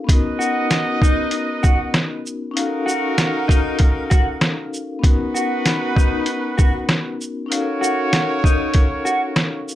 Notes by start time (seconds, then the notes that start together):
Already playing: A#4
0.04 B3 C#4
0.08 D#4 F#4 B4 D#5, kick, closed hi-hat
0.13 A#4
0.39 F#4, shaker
0.71 snare, closed hi-hat
1.02 D#4, kick, shaker
1.31 closed hi-hat
1.63 F#4, kick, shaker
1.94 snare, closed hi-hat
2.26 shaker
2.51 C#4 D#4
2.56 D#4 F#4 A#4 F5, closed hi-hat
2.60 A4
2.67 A#4
2.86 F#4, shaker
3.18 snare, closed hi-hat
3.48 D#4, kick, closed hi-hat, shaker
3.79 kick, closed hi-hat
4.10 F#4, kick, closed hi-hat, shaker
4.41 snare, closed hi-hat
4.74 shaker
4.99 B3 C#4
5.03 D#4 F#4 B4, kick, closed hi-hat
5.08 A#4
5.34 F#4, shaker
5.66 snare, closed hi-hat
5.95 D#4, kick, shaker
6.26 closed hi-hat
6.58 F#4, kick, shaker
6.89 snare, closed hi-hat
7.21 shaker
7.46 C#4 D#4 F#4 A#4 C#5
7.51 F#4 F5, closed hi-hat
7.55 A4
7.62 A#4
7.81 F#4, shaker
8.13 snare, closed hi-hat
8.44 D#4, kick, shaker
8.74 kick, closed hi-hat
9.05 F#4, shaker
9.36 snare, closed hi-hat
9.69 shaker